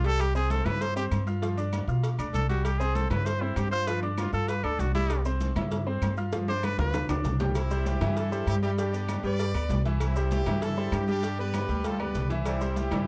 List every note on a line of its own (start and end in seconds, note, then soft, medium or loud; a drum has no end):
0.00 0.60 C2 loud
0.04 0.29 G3 medium
0.04 0.30 G4 medium
0.04 0.22 A4 loud
0.04 0.30 G5 medium
0.04 cowbell medium
0.04 maracas soft
0.20 0.35 G4 loud
0.20 cowbell loud
0.20 high conga soft
0.20 low agogo loud
0.20 claves medium
0.20 maracas medium
0.35 0.60 C4 medium
0.35 0.52 G#4 loud
0.35 0.60 C5 medium
0.35 0.60 C6 medium
0.35 high conga soft
0.35 low agogo medium
0.35 maracas medium
0.50 0.67 A4 medium
0.50 cowbell medium
0.50 high conga medium
0.50 maracas medium
0.65 1.08 G2 loud
0.65 0.91 E4 medium
0.65 0.83 B4 loud
0.65 0.91 E5 medium
0.65 0.91 E6 medium
0.65 cowbell medium
0.65 high conga medium
0.65 low conga medium
0.65 low agogo loud
0.65 claves medium
0.65 maracas soft
0.81 0.96 C5 loud
0.81 cowbell loud
0.81 high conga soft
0.81 low agogo medium
0.81 maracas medium
0.96 1.21 C4 medium
0.96 1.05 G4 medium
0.96 1.22 C5 medium
0.96 1.22 C6 medium
0.96 high conga soft
0.96 maracas medium
1.11 1.82 G2 loud
1.11 cowbell medium
1.11 high conga medium
1.11 low agogo loud
1.11 claves medium
1.11 maracas medium
1.27 1.39 F4 medium
1.27 1.39 F5 medium
1.27 1.40 F6 medium
1.27 high conga soft
1.27 low agogo medium
1.27 maracas soft
1.42 1.55 F3 medium
1.42 1.55 F4 medium
1.42 1.55 F5 medium
1.42 cowbell loud
1.42 high conga soft
1.42 maracas medium
1.57 1.82 D4 medium
1.57 1.83 D5 medium
1.57 1.83 D6 medium
1.57 high conga soft
1.57 low agogo medium
1.57 maracas medium
1.73 cowbell medium
1.73 high conga medium
1.73 low agogo loud
1.73 claves medium
1.73 maracas medium
1.87 2.16 B2 loud
1.87 2.13 F4 medium
1.87 2.13 F5 medium
1.87 2.14 F6 medium
1.87 high conga soft
1.87 maracas soft
2.03 cowbell loud
2.03 high conga soft
2.03 low agogo medium
2.03 maracas medium
2.18 2.33 D2 medium
2.18 2.44 D4 medium
2.18 2.44 D5 medium
2.18 2.44 D6 medium
2.18 high conga soft
2.18 low agogo loud
2.18 claves medium
2.18 maracas medium
2.34 3.05 C2 loud
2.34 2.48 A4 medium
2.34 cowbell medium
2.34 high conga medium
2.34 maracas medium
2.49 2.75 G3 medium
2.49 2.66 F#4 medium
2.49 2.75 G4 medium
2.49 2.75 G5 medium
2.49 cowbell medium
2.49 maracas soft
2.65 2.80 G4 medium
2.65 cowbell loud
2.65 high conga soft
2.65 low agogo loud
2.65 claves medium
2.65 maracas medium
2.79 3.05 C4 medium
2.79 2.97 G#4 medium
2.79 3.05 C5 medium
2.79 3.05 C6 medium
2.79 high conga soft
2.79 low agogo medium
2.79 maracas medium
2.95 3.10 A4 medium
2.95 cowbell medium
2.95 high conga medium
2.95 maracas medium
3.10 3.53 G2 loud
3.10 3.36 E4 medium
3.10 3.27 B4 medium
3.10 3.36 E5 medium
3.10 3.36 E6 medium
3.10 cowbell medium
3.10 high conga loud
3.10 low conga medium
3.10 low agogo loud
3.10 claves medium
3.10 maracas soft
3.26 3.43 C5 loud
3.26 cowbell loud
3.26 high conga soft
3.26 low agogo medium
3.26 maracas medium
3.41 3.66 C4 medium
3.41 3.58 E4 medium
3.41 3.66 C5 medium
3.41 3.67 C6 medium
3.41 high conga soft
3.56 4.27 G2 loud
3.56 3.71 G4 medium
3.56 cowbell medium
3.56 high conga medium
3.56 low timbale medium
3.56 low agogo loud
3.56 claves medium
3.56 maracas medium
3.71 3.85 F4 medium
3.71 3.89 C5 loud
3.71 3.85 F5 medium
3.71 3.85 F6 medium
3.71 high conga soft
3.71 low agogo medium
3.71 maracas soft
3.87 4.00 F3 medium
3.87 4.00 F4 medium
3.87 4.02 B4 loud
3.87 4.00 F5 medium
3.87 cowbell loud
3.87 high conga soft
3.87 maracas medium
4.02 4.28 D4 medium
4.02 4.19 D4 medium
4.02 4.28 D5 medium
4.02 4.28 D6 medium
4.02 high conga soft
4.02 low agogo medium
4.18 4.32 F4 medium
4.18 cowbell medium
4.18 high conga loud
4.18 low agogo loud
4.18 claves medium
4.18 maracas medium
4.33 4.61 G2 loud
4.33 4.58 F4 medium
4.33 4.50 A4 medium
4.33 4.58 F5 medium
4.33 4.59 F6 medium
4.33 high conga soft
4.33 maracas soft
4.48 4.65 B4 medium
4.48 cowbell loud
4.48 high conga soft
4.48 low agogo medium
4.48 maracas medium
4.64 4.78 D2 medium
4.64 4.89 D4 medium
4.64 4.81 A4 medium
4.64 4.89 D5 medium
4.64 4.89 D6 medium
4.64 high conga soft
4.64 low agogo loud
4.64 claves medium
4.79 5.50 C2 medium
4.79 4.94 F#4 medium
4.79 cowbell medium
4.79 high conga medium
4.79 low timbale medium
4.79 maracas medium
4.95 5.20 G3 medium
4.95 5.23 E4 medium
4.95 5.20 G4 medium
4.95 5.20 G5 medium
4.95 cowbell medium
4.95 high conga medium
4.95 maracas soft
5.10 cowbell loud
5.10 low agogo loud
5.10 claves medium
5.10 maracas medium
5.25 5.51 C4 medium
5.25 5.51 C5 medium
5.25 5.51 C6 medium
5.25 high conga soft
5.25 low agogo medium
5.25 maracas medium
5.41 cowbell medium
5.41 high conga loud
5.41 maracas medium
5.56 5.99 G2 medium
5.56 5.81 E4 medium
5.56 5.81 E5 medium
5.56 5.81 E6 medium
5.56 cowbell medium
5.56 high conga loud
5.56 low conga medium
5.56 low agogo loud
5.56 claves medium
5.56 maracas soft
5.71 cowbell loud
5.71 high conga soft
5.71 low conga medium
5.71 low agogo medium
5.71 maracas medium
5.87 6.12 C4 medium
5.87 6.12 C5 medium
5.87 6.12 C6 medium
5.87 high conga soft
6.01 6.73 G2 medium
6.01 cowbell medium
6.01 high conga medium
6.01 low timbale medium
6.01 low agogo loud
6.01 claves medium
6.01 maracas medium
6.17 6.30 F4 medium
6.17 6.30 F5 medium
6.17 6.30 F6 medium
6.17 high conga soft
6.17 low agogo medium
6.17 maracas soft
6.32 6.45 F3 medium
6.32 6.45 F4 medium
6.32 6.45 F5 medium
6.32 cowbell loud
6.32 high bongo medium
6.32 high conga medium
6.32 maracas medium
6.48 6.73 D4 medium
6.48 6.66 C5 loud
6.48 6.73 D5 medium
6.48 6.74 D6 medium
6.48 high bongo loud
6.48 low agogo medium
6.63 6.79 B4 medium
6.63 cowbell medium
6.63 high bongo medium
6.63 high conga loud
6.63 low agogo loud
6.63 claves medium
6.63 maracas medium
6.78 7.07 D2 loud
6.78 7.04 F4 medium
6.78 7.08 B4 loud
6.78 7.04 F5 medium
6.78 7.04 F6 medium
6.78 low bongo loud
6.78 low conga loud
6.78 maracas soft
6.94 cowbell loud
6.94 low bongo loud
6.94 low conga medium
6.94 high timbale medium
6.94 low agogo medium
6.94 maracas medium
7.09 7.23 D2 medium
7.09 7.34 D4 medium
7.09 7.35 D5 medium
7.09 7.35 D6 medium
7.09 low conga loud
7.09 high timbale loud
7.09 low agogo loud
7.09 claves medium
7.09 maracas medium
7.24 7.95 C2 loud
7.24 cowbell medium
7.24 low bongo medium
7.24 low conga medium
7.24 low timbale medium
7.24 maracas medium
7.40 7.53 G3 medium
7.40 7.53 G4 medium
7.40 7.53 G5 medium
7.40 cowbell medium
7.40 low bongo medium
7.40 low conga loud
7.40 low timbale loud
7.40 maracas soft
7.55 7.85 C4 medium
7.55 7.84 E4 medium
7.55 cowbell loud
7.55 high conga soft
7.55 low agogo loud
7.55 claves medium
7.55 maracas medium
7.70 7.96 G3 medium
7.70 7.96 G4 medium
7.70 7.96 C5 medium
7.70 high conga soft
7.70 low agogo medium
7.70 maracas medium
7.86 8.17 E4 medium
7.86 8.17 G4 medium
7.86 cowbell medium
7.86 high conga medium
7.86 maracas medium
8.01 8.44 G2 loud
8.01 8.26 E3 medium
8.01 8.27 E4 medium
8.01 8.27 E5 medium
8.01 cowbell medium
8.01 high conga loud
8.01 low conga medium
8.01 low agogo loud
8.01 claves medium
8.01 maracas soft
8.16 8.48 E4 medium
8.16 8.48 A4 loud
8.16 cowbell loud
8.16 high conga soft
8.16 low agogo medium
8.16 maracas medium
8.32 8.57 G3 medium
8.32 8.57 G4 medium
8.32 8.57 C5 medium
8.32 high conga soft
8.32 maracas medium
8.47 9.18 G2 medium
8.47 8.56 E4 medium
8.47 8.55 G4 loud
8.47 cowbell medium
8.47 high conga medium
8.47 low agogo loud
8.47 claves medium
8.47 maracas medium
8.63 8.75 G3 loud
8.63 8.71 E4 medium
8.63 8.75 G4 medium
8.63 8.70 G4 medium
8.63 8.76 G5 medium
8.63 low agogo medium
8.63 maracas soft
8.78 8.91 G3 medium
8.78 9.21 D4 medium
8.78 9.21 G4 loud
8.78 8.91 G4 medium
8.78 8.91 G5 medium
8.78 cowbell loud
8.78 maracas medium
8.93 9.18 B3 medium
8.93 9.19 B4 medium
8.93 9.19 D5 medium
8.93 high conga soft
8.93 low agogo medium
8.93 maracas medium
9.08 cowbell medium
9.08 high conga medium
9.08 low agogo loud
9.08 claves medium
9.08 maracas medium
9.23 9.52 G2 loud
9.23 9.49 G3 medium
9.23 9.49 G4 medium
9.23 9.82 B4 medium
9.23 9.82 D5 loud
9.23 9.49 G5 medium
9.23 high conga soft
9.23 maracas soft
9.39 cowbell loud
9.39 low agogo medium
9.39 maracas medium
9.54 9.68 D2 medium
9.54 9.80 B3 medium
9.54 9.80 B4 medium
9.54 9.80 D5 medium
9.54 high conga soft
9.54 low agogo loud
9.54 claves medium
9.69 10.41 C2 loud
9.69 cowbell medium
9.69 high conga medium
9.69 low timbale medium
9.69 maracas medium
9.85 10.11 E3 medium
9.85 10.11 E4 loud
9.85 10.11 E5 medium
9.85 cowbell medium
9.85 maracas soft
10.00 10.29 C4 medium
10.00 10.29 E4 medium
10.00 cowbell loud
10.00 high conga soft
10.00 low agogo loud
10.00 claves medium
10.00 maracas medium
10.16 10.41 G3 medium
10.16 10.41 G4 medium
10.16 10.41 C5 medium
10.16 high conga soft
10.16 low agogo medium
10.16 maracas medium
10.31 10.60 E4 medium
10.31 10.60 G4 loud
10.31 cowbell medium
10.31 high conga loud
10.31 maracas medium
10.46 10.89 G2 loud
10.46 10.71 E3 medium
10.46 10.72 E4 medium
10.46 10.72 E5 medium
10.46 cowbell medium
10.46 high conga loud
10.46 low conga medium
10.46 low agogo loud
10.46 claves medium
10.46 maracas soft
10.62 10.92 E4 medium
10.62 10.93 A4 loud
10.62 cowbell loud
10.62 high conga soft
10.62 low conga medium
10.62 low agogo medium
10.62 maracas medium
10.77 11.02 G3 medium
10.77 11.02 G4 medium
10.77 11.03 C5 medium
10.77 high conga soft
10.92 11.63 G2 loud
10.92 11.08 E4 medium
10.92 11.08 G4 medium
10.92 cowbell medium
10.92 high conga medium
10.92 low agogo loud
10.92 claves medium
10.92 maracas medium
11.08 11.21 G3 medium
11.08 11.37 D4 medium
11.08 11.21 G4 loud
11.08 11.37 G4 loud
11.08 11.21 G5 loud
11.08 high conga soft
11.08 low agogo medium
11.08 maracas soft
11.23 11.36 G3 medium
11.23 11.36 G4 medium
11.23 11.36 G5 medium
11.23 cowbell loud
11.23 high conga soft
11.23 maracas medium
11.38 11.64 B3 medium
11.38 11.82 G4 medium
11.38 11.64 B4 medium
11.38 11.82 B4 loud
11.38 11.64 D5 medium
11.38 high conga soft
11.38 low agogo medium
11.54 cowbell medium
11.54 high conga loud
11.54 low agogo loud
11.54 claves medium
11.54 maracas medium
11.68 12.12 D2 loud
11.68 11.94 G3 medium
11.68 11.94 G4 medium
11.68 11.95 G5 medium
11.68 high conga soft
11.68 maracas soft
11.84 12.00 F4 medium
11.84 12.00 A4 medium
11.84 cowbell loud
11.84 high conga medium
11.84 low agogo medium
11.84 maracas medium
12.00 12.25 B3 medium
12.00 12.31 G4 medium
12.00 12.31 B4 loud
12.00 12.25 B4 medium
12.00 12.25 D5 medium
12.00 high conga medium
12.00 low agogo loud
12.00 claves medium
12.15 12.86 C2 medium
12.15 cowbell medium
12.15 low conga medium
12.15 maracas medium
12.30 12.55 E3 medium
12.30 12.56 E4 medium
12.30 12.56 E5 medium
12.30 cowbell medium
12.30 low conga medium
12.30 maracas soft
12.45 12.70 G3 medium
12.45 12.75 C4 medium
12.45 12.75 E4 medium
12.45 cowbell loud
12.45 high conga soft
12.45 low agogo loud
12.45 claves medium
12.45 maracas medium
12.61 12.86 G3 medium
12.61 12.86 G4 medium
12.61 12.86 C5 medium
12.61 high conga soft
12.61 low agogo medium
12.61 maracas medium
12.76 13.07 E4 medium
12.76 13.07 G4 medium
12.76 cowbell medium
12.76 high conga medium
12.76 maracas medium
12.91 13.07 G2 loud
12.91 13.07 E3 medium
12.91 12.99 G3 medium
12.91 13.07 E4 medium
12.91 13.07 E5 medium
12.91 cowbell medium
12.91 high conga loud
12.91 low conga medium
12.91 low agogo loud
12.91 claves medium
12.91 maracas soft